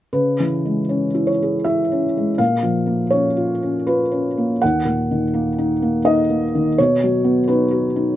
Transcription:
0.13 C#3 B4
0.40 E3
0.65 G#3
0.89 C#4
1.14 E4
1.27 C#5
1.42 G#4
1.64 E4 E5
1.92 C#4
2.17 G#3
2.38 A#2 F5
2.63 F3
2.86 A#3
3.10 C#4 C#5
3.37 F4
3.63 C#4
3.87 F4 B4
4.12 C#4
4.38 A#3
4.62 D#2 F#5
4.85 A#2
5.11 D#3
5.34 A#3
5.58 D#4
5.82 A#3
6.05 D#4 D#5
6.30 A#3
6.55 D#3
6.78 B2 C#5
7.04 F#3
7.24 B3
7.48 D#4 B4
7.71 F#4
7.96 D#4

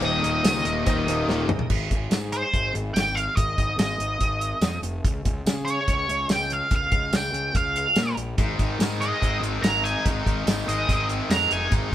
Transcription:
Already playing: D#2 A#2 D#3 A#3 D#4 G4 D#5
0.02 D#1 D#5, cowbell
0.23 D#1, closed hi-hat
0.44 C#2, snare, closed hi-hat, tambourine, cowbell
0.65 D#1, closed hi-hat
0.86 D#1 D#2 A#2 D#3, kick, closed hi-hat, cowbell
1.07 D#1 D#2 A#2 D#3, closed hi-hat, cowbell
1.27 D#1 D#2 A#2 D#3, snare, cowbell
1.49 C#2, mid tom, cowbell
1.59 floor tom
1.70 G#1, kick, crash
1.91 G#1, kick, closed hi-hat
2.11 G#2, snare, closed hi-hat, tambourine
2.32 C5, closed hi-hat
2.54 G#1, kick, closed hi-hat
2.74 G#1, closed hi-hat
2.94 G#1 G5, snare, closed hi-hat, tambourine
3.15 F5, closed hi-hat
3.36 G#1 D#5, kick, closed hi-hat
3.58 G#1, kick, closed hi-hat
3.78 G#1 D#5, snare, closed hi-hat, tambourine
3.99 G#1, closed hi-hat
4.20 G#1, kick, closed hi-hat
4.41 closed hi-hat
4.61 F2, snare, closed hi-hat, tambourine
4.82 F1, closed hi-hat
5.04 C#2, kick, closed hi-hat
5.25 C#2, kick, closed hi-hat
5.46 C#3, snare, closed hi-hat, tambourine
5.65 C#5, closed hi-hat
5.88 C#2, kick, closed hi-hat
6.09 C#2, closed hi-hat
6.29 C#2 G5, snare, closed hi-hat, tambourine
6.50 F5, closed hi-hat
6.71 C#2, kick, closed hi-hat
6.75 F5
6.92 C#2, kick, closed hi-hat
7.12 C#2 G5, snare, closed hi-hat, tambourine
7.33 C#2, closed hi-hat
7.55 C#2 F5, kick, closed hi-hat
7.76 closed hi-hat
7.96 A#2, snare, closed hi-hat, tambourine
8.17 A#1, closed hi-hat
8.38 G#1 G#2 C4 D#4 G#4 D#5, kick, closed hi-hat
8.59 G#1 D#3, kick, closed hi-hat
8.79 G#2 D#3, snare, closed hi-hat, tambourine
9.01 G#3 D#5, closed hi-hat
9.22 G#1 C4, kick, closed hi-hat
9.41 G#1 D#3, closed hi-hat
9.62 G#1 G#3 A#5, snare, closed hi-hat, tambourine
9.83 D#4 G#5, closed hi-hat
10.05 G#1 G#2, kick, closed hi-hat
10.26 G#1 D#3, kick, closed hi-hat
10.46 G#1 D#3, snare, closed hi-hat, tambourine
10.67 G#1 G#3 D#5, closed hi-hat
10.89 G#1 C4, kick, closed hi-hat
11.09 D#3, closed hi-hat
11.29 F2 G#3 A#5, snare, closed hi-hat, tambourine
11.50 F1 D#4 G#5, closed hi-hat
11.72 G#1 G#2 C4 D#4 G#4, kick, closed hi-hat

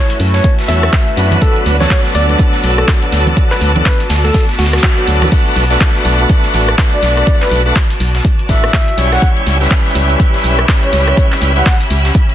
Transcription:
Already playing: A3 C#4 E4 F#4 B4 C#5 E5 A5
0.10 closed hi-hat
0.20 F#2, open hi-hat, shaker
0.34 C#5, snare, closed hi-hat
0.44 kick, closed hi-hat, shaker
0.59 snare, closed hi-hat
0.68 E2 F#3 C#4 E4 A4 E5, open hi-hat, high conga, shaker
0.83 cross-stick, closed hi-hat
0.93 kick, snare, clap, closed hi-hat, shaker
1.07 closed hi-hat
1.16 F#2 F#3 B3 D4 B4, open hi-hat, shaker
1.31 closed hi-hat, low conga
1.42 B3 D4 A4, kick, closed hi-hat, shaker
1.56 D5, closed hi-hat
1.66 D2, open hi-hat, high conga, shaker
1.80 F#3 B3 D4 A4 C#5, snare, low conga
1.90 kick, snare, clap, closed hi-hat, shaker
2.05 snare, closed hi-hat
2.15 D2 D5, open hi-hat, shaker
2.29 closed hi-hat, high conga
2.39 kick, closed hi-hat, shaker
2.54 snare, closed hi-hat
2.64 B1, open hi-hat, shaker
2.78 A4, cross-stick, closed hi-hat
2.87 F#3 B3 D4 A4, kick, snare, clap, closed hi-hat, shaker
3.03 closed hi-hat
3.12 D2, snare, open hi-hat, shaker
3.27 closed hi-hat, high conga, low conga
3.37 A4, kick, closed hi-hat, shaker
3.51 B4, snare, clap, closed hi-hat
3.61 D2, open hi-hat, high conga, shaker
3.75 F#3 B3 D4 A4, closed hi-hat, low conga
3.86 B4, kick, snare, clap, closed hi-hat, shaker
4.00 closed hi-hat
4.10 D2, snare, open hi-hat, shaker
4.24 A4, snare, closed hi-hat, high conga
4.34 kick, snare, closed hi-hat, shaker
4.49 snare, closed hi-hat
4.59 D2 F#4, snare, open hi-hat, high conga, shaker
4.66 snare, shaker
4.73 cross-stick, snare, closed hi-hat, shaker
4.78 snare, shaker
4.83 kick, snare, clap, closed hi-hat
4.97 F#3 B3 D4 A4, closed hi-hat
5.08 D2, open hi-hat, shaker
5.22 cross-stick, snare, closed hi-hat, low conga
5.32 A3 D4 F#4 B4, kick, closed hi-hat, crash, shaker
5.47 closed hi-hat
5.56 B1, open hi-hat, shaker
5.70 A3 D4 F#4 B4, snare
5.81 kick, snare, clap, closed hi-hat, shaker
5.95 snare, closed hi-hat
6.05 B1, open hi-hat, shaker
6.20 closed hi-hat
6.29 kick, closed hi-hat, shaker
6.44 snare, closed hi-hat
6.54 A1, open hi-hat, shaker
6.68 cross-stick, closed hi-hat
6.77 A3 D4 F#4 B4, kick, snare, clap, closed hi-hat, shaker
6.93 D5, closed hi-hat
7.03 B1, snare, open hi-hat, shaker
7.17 D5, cross-stick, closed hi-hat
7.27 kick, closed hi-hat, shaker
7.41 B4, snare, clap, closed hi-hat
7.51 B1, open hi-hat, shaker
7.66 A3 D4 F#4 B4
7.76 kick, snare, clap, closed hi-hat, shaker
7.90 closed hi-hat
8.00 B1, open hi-hat, shaker
8.15 snare, closed hi-hat
8.25 kick, closed hi-hat, shaker
8.39 closed hi-hat
8.49 A1 A3 D4 F#4 B4 E5, kick, open hi-hat, shaker
8.64 cross-stick, closed hi-hat
8.73 kick, snare, clap, closed hi-hat, shaker
8.88 closed hi-hat
8.97 B1 G3 C#4 E4 C#5, open hi-hat, shaker
9.12 F#5, cross-stick, snare, closed hi-hat
9.22 C#4, kick, closed hi-hat, shaker
9.35 G4, closed hi-hat
9.45 C#2 E5, open hi-hat, shaker
9.60 G3 C#4 E4 B4, snare
9.71 kick, snare, clap, closed hi-hat, shaker
9.86 snare, closed hi-hat
9.95 C#2, open hi-hat, shaker
10.10 closed hi-hat
10.19 B5, kick, closed hi-hat, shaker
10.34 snare, closed hi-hat
10.44 B1, open hi-hat, shaker
10.59 cross-stick, closed hi-hat
10.68 G3 C#4 E4 B4, kick, snare, clap, closed hi-hat, shaker
10.83 C#5, closed hi-hat
10.93 C#2, snare, open hi-hat, shaker
11.07 C#5, cross-stick, closed hi-hat
11.17 kick, closed hi-hat, shaker
11.32 snare, clap, closed hi-hat
11.42 C#2, open hi-hat, shaker
11.56 G3 C#4 E4 B4 F#5, closed hi-hat
11.66 F#5, kick, snare, clap, closed hi-hat, shaker
11.81 closed hi-hat
11.90 C#2, open hi-hat, shaker
12.05 snare, closed hi-hat
12.15 kick, closed hi-hat, shaker
12.29 closed hi-hat

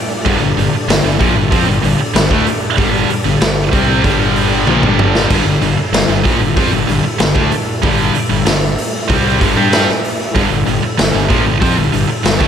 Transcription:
Already playing: G3 D4 A4
0.25 G1 G2 D3, kick, open hi-hat
0.40 G1 G2 D3
0.56 G1 G2 D3, open hi-hat
0.72 muted fingered electric bass stroke, muted distorted electric guitar stroke
0.88 G1 G2 D3, snare, open hi-hat
1.03 G1 G2 D3
1.19 A#1 A#2 F3, kick, open hi-hat
1.36 G1 G2 D3
1.51 F2 F3 C4, kick, open hi-hat
1.66 G1 G2 D3
1.83 G1 G2 D3, open hi-hat
1.99 muted fingered electric bass stroke, muted distorted electric guitar stroke
2.14 G1 G2 D3, snare, open hi-hat
2.31 D2 D3 A3, kick
2.46 muted fingered electric bass stroke, muted distorted electric guitar stroke, open hi-hat
2.78 G1 G2 D3 G3, kick, open hi-hat
3.08 muted fingered electric bass stroke, muted distorted electric guitar stroke, open hi-hat
3.24 G1 G2 D3
3.41 G1 G2 D3, snare, open hi-hat
3.72 C2 C3 G3 C4, kick, open hi-hat
4.03 G1 G2 D3 G3, kick, open hi-hat
4.36 open hi-hat
4.67 A#1 A#2 F3, high tom
4.82 G1 G2 D3 G3, mid tom
4.99 mid tom
5.15 snare
5.29 G1 G2 D3 E4, kick, open hi-hat, crash
5.45 G1 G2 D3
5.61 G1 G2 D3, open hi-hat
5.77 muted fingered electric bass stroke, muted distorted electric guitar stroke
5.92 G1 G2 D3, snare, open hi-hat
6.08 G1 G2 D3
6.24 A#1 A#2 F3, kick, open hi-hat
6.40 G1 G2 D3
6.56 F2 F3 C4, kick, open hi-hat
6.72 G1 G2 D3
6.87 G1 G2 D3, open hi-hat
7.03 muted distorted electric guitar stroke, muted fingered electric bass stroke
7.19 G1 G2 D3, snare, open hi-hat
7.35 D2 D3 A3, kick
7.51 muted fingered electric bass stroke, muted distorted electric guitar stroke, open hi-hat
7.82 G1 G2 D3 G3, kick, open hi-hat
8.14 muted fingered electric bass stroke, muted distorted electric guitar stroke, open hi-hat
8.29 G1 G2 D3
8.46 G1 G2 D3, snare, open hi-hat
8.78 open hi-hat
9.09 C2 C3 G3 C4, kick, open hi-hat
9.40 G1 G2 D3, kick, open hi-hat
9.56 G2 G3 D4 G4
9.72 snare, open hi-hat
9.87 muted distorted electric guitar stroke, muted fingered electric bass stroke, snare
10.04 open hi-hat
10.35 G1 G2 D3, kick, open hi-hat
10.50 G1 G2 D3
10.66 G1 G2 D3, open hi-hat
10.82 muted distorted electric guitar stroke, muted fingered electric bass stroke
10.98 G1 G2 D3, snare, open hi-hat
11.14 G1 G2 D3
11.29 A#1 A#2 F3, kick, open hi-hat
11.46 G1 G2 D3
11.61 F2 F3 C4, kick, open hi-hat
11.77 G1 G2 D3
11.92 G1 G2 D3, open hi-hat
12.09 muted distorted electric guitar stroke, muted fingered electric bass stroke
12.24 G1 G2 D3, snare, open hi-hat
12.39 D2 D3 A3, kick, snare

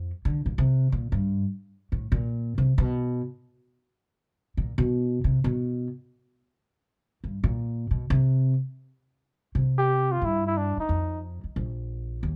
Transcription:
0.25 D3
0.46 A#2
0.58 C3
0.92 A#2
1.12 G2
1.92 A2
2.12 A#2
2.58 C3
2.78 B2
4.57 A#2
4.78 B2
5.24 C3
5.44 B2
7.24 G2
7.44 A#2
7.91 B2
8.10 C3
9.55 C3
9.78 G4
10.12 F4
10.21 G2 E4
10.47 E4
10.57 D4
10.77 D#4, muted upright bass stroke
10.89 F2
11.44 muted upright bass stroke
11.56 A#1
12.23 D#2

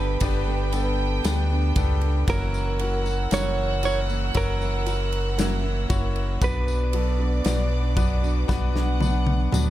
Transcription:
Already playing: G1 G2 B3 D4 G4 A4 B4 G5 B5
0.20 G1 B3 D4 G4 B4 G5 A5, kick, ride, tambourine
0.46 B3 D4 A4
0.72 G3 B3 D4 G4 A4, ride, tambourine
1.24 D2 G3 B3 D4 G4 A4 B4, snare, ride, tambourine
1.50 B3 D4 A4
1.75 C#2 G3 B3 D4 G4 A4, kick, ride, tambourine
2.01 B3 D4 A4, ride
2.27 F#1 F#2 C#3 E3 A#3 C#4 E4 F#4 A#4 F#5 E6, kick, ride, tambourine
2.54 tambourine
2.79 E3 A#3 C#4 E4 F#4 A#4, ride
3.05 E3 A#3 E4 F#4, tambourine
3.31 F#1 F#2 C#3 E3 A#3 C#4 E4 F#4 A#4 C#5, snare, ride, tambourine
3.82 E3 A#3 C#4 E4 F#4 A#4 C#5, ride, tambourine
4.08 E3 A#3 E4 F#4, tambourine
4.34 F#1 C#4 E4 F#4 A#4 C#5 E5, kick, ride, tambourine
4.59 E3 A#3 E4 F#4, tambourine
4.85 E3 A#3 C#4 E4 F#4 A#4, ride, tambourine
5.12 ride
5.37 F#2 C#3 E3 A#3 C#4 E4 F#4 C#5, snare, ride, tambourine
5.63 E3 A#3 E4 F#4
5.89 F#1 E3 A#3 C#4 E4 F#4 C#5, kick, ride, tambourine
6.16 ride
6.41 B1 B2 F#3 B3 D4 F#4 B4 D5 F#5 D6, kick, ride, tambourine
6.68 tambourine
6.93 F#3 B3 D4 F#4 A4, ride
7.18 B3 D4 F#4
7.44 B1 B2 F#3 B3 D4 F#4 D5, snare, ride, tambourine
7.96 F#3 B3 D4 F#4 B4, kick, ride, tambourine
8.22 B3 D4 F#4, tambourine
8.48 B1 B3 D4 F#4 B4 F#5, kick, snare, tambourine
8.74 B3 D4 F#4, snare
8.99 F#3 B3 D4 F#4 B4, high tom, tambourine
9.27 high tom
9.52 D2 B2 F#3 B3 D4 F#4 B4, mid tom, tambourine

